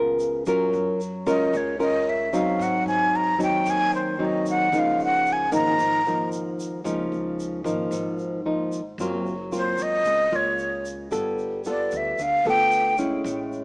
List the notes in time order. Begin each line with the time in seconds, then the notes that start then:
Already playing: C#2 C#3 B3 F4 A#4
0.19 shaker
0.46 F#2 F#3 C#4 F4 A#4, shaker
0.73 F#2, shaker
1.01 shaker
1.26 C#2 C#4 F4 A#4 D#5, shaker
1.53 C#2 C#3 C#5, shaker
1.79 C#4 F4 A#4 D#5, shaker
2.09 E5
2.33 F#3 C4 D#4 F5, shaker
2.59 G#2 F#5, shaker
2.86 G#2 G#5, shaker
3.16 A#5
3.38 D#2 F#3 C4 D#4, shaker
3.43 G5
3.65 D#2 D#3, shaker
3.70 G#5
3.92 C5, shaker
4.19 F#3 C4 D#4
4.25 D#5
4.46 F#5, shaker
4.72 C#2 C#3 F3 A#3 D#4, shaker
4.79 F5
4.99 C#2, shaker
5.04 F#5
5.26 shaker
5.33 G#5
5.52 G#1 F3 A#3 D#4 A#5, shaker
5.78 G#1 G#2, shaker
6.06 F3 A#3 D#4, shaker
6.32 shaker
6.60 shaker
6.84 C#2 C#3 F3 A#3 D#4, shaker
7.12 C#2, shaker
7.40 shaker
7.64 G#1 F3 A#3 D#4, shaker
7.91 G#1 G#2, shaker
8.18 shaker
8.46 F3 A#3 D#4
8.72 shaker
8.98 F#1 F#3 A#3 C4 F4, shaker
9.26 shaker
9.52 A#3 C4 F4, shaker
9.57 C5
9.78 C#2, shaker
9.82 D#5
10.05 C#2 C#3, shaker
10.32 C#2 A#3 F4 C#5, shaker
10.58 shaker
10.85 shaker
11.11 G1 G3 B3 F4 A4, shaker
11.38 shaker
11.65 B3 F4 A4, shaker
11.69 D5
11.91 D2, shaker
11.97 E5
12.18 D2 D3 F5, shaker
12.45 D2 B3 F4 A4, shaker
12.49 G5
12.71 shaker
12.98 G#3 C#4 E4, shaker
13.24 A1 A2, shaker
13.52 shaker